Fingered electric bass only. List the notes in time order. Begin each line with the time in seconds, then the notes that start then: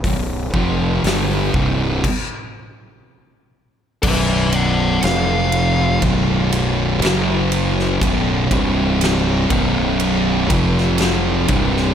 0.04 B0
0.54 F1
1.03 G1
1.55 C1
4.04 B0
5.03 F1
6.02 B0
7.03 F#1
8.01 B0
8.51 C1
9.50 B0
10.50 F1
11.49 C1